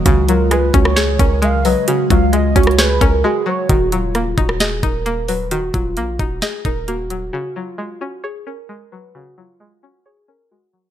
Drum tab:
HH |x-----x-----x-----x-----x-----x-----x-----o-----|x-----x-----x-----x-x-x-x-----x-----------------|x-----x-----x-----x-----x-----x-----x-----o-----|x-----x-----x-----x-----x-----x-----x-----x-----|
SD |------------r--------r--o-----------------------|---------------------r--o-----------------------|------------r--------r--o-----------------------|------------------------o-----------------------|
BD |o-----------------o-----------o-----------------|------o-----------o-----------o-----------------|o-----------------o-----------o-----------------|------o-----------o-----------o-----------------|

HH |------------------------------------------------|------------------------------------------------|
SD |------------------------------------------------|------------------------------------------------|
BD |------------------------------------------------|------------------------------------------------|